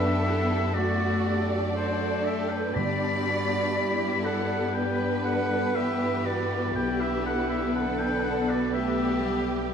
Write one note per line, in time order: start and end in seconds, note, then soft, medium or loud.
0.00 2.72 F#2 medium
0.00 0.71 D3 medium
0.00 0.76 B3 medium
0.00 0.24 D4 medium
0.00 0.76 G4 medium
0.00 0.73 A4 medium
0.00 0.24 B4 medium
0.00 0.76 E5 medium
0.24 0.75 E4 medium
0.24 0.75 A4 medium
0.74 1.75 A3 medium
0.74 1.26 F#4 medium
0.74 1.75 F#4 medium
0.74 1.26 F#4 medium
0.74 1.49 D5 medium
0.74 2.76 D5 medium
1.26 2.75 D4 medium
1.26 1.76 G4 medium
1.76 2.74 A3 medium
1.76 2.25 F#4 medium
1.76 2.75 A4 medium
1.76 2.27 C5 medium
2.25 2.51 G4 medium
2.25 2.51 E5 medium
2.50 2.76 B4 medium
2.50 2.76 G5 medium
2.75 6.72 G2 medium
2.75 4.22 G2 medium
2.75 5.73 G3 medium
2.75 6.75 B3 medium
2.75 3.74 D4 medium
2.75 3.24 G4 medium
2.75 4.25 D5 medium
2.75 4.72 D5 medium
2.75 4.27 B5 loud
3.26 3.76 F#4 medium
3.75 4.76 E4 medium
3.75 4.25 G4 medium
4.24 4.75 A4 medium
4.24 4.76 F#5 medium
4.74 5.77 D4 medium
4.74 5.26 B4 medium
4.74 6.76 B4 medium
4.74 5.77 B4 medium
4.74 5.24 G5 medium
5.25 5.76 A4 medium
5.25 5.77 F#5 medium
5.75 6.76 E3 medium
5.75 6.26 G4 medium
5.75 6.76 G4 medium
5.75 9.71 B4 medium
5.75 6.28 E5 medium
6.26 6.75 F#4 medium
6.26 6.75 D5 medium
6.76 9.74 B1 medium
6.76 8.74 D3 medium
6.76 9.70 B3 medium
6.76 7.75 E4 medium
6.76 7.76 G4 medium
6.76 7.01 B4 medium
6.76 7.02 G5 medium
7.01 7.26 G4 medium
7.01 7.25 E5 medium
7.26 7.52 A4 medium
7.26 7.49 F#5 medium
7.50 7.75 G4 medium
7.50 7.75 E5 medium
7.76 8.75 D4 medium
7.76 8.72 A4 medium
7.76 8.01 A4 medium
7.76 8.00 F#5 medium
7.99 8.25 B4 medium
7.99 8.26 G5 medium
8.24 8.50 A4 medium
8.24 8.51 F#5 medium
8.50 8.74 F#4 medium
8.50 8.73 D5 medium
8.74 9.23 A3 medium
8.74 9.23 G4 medium
8.74 9.72 G4 medium
8.74 9.74 G4 medium
8.74 9.46 E5 medium
9.24 9.74 G3 medium
9.24 9.74 G4 medium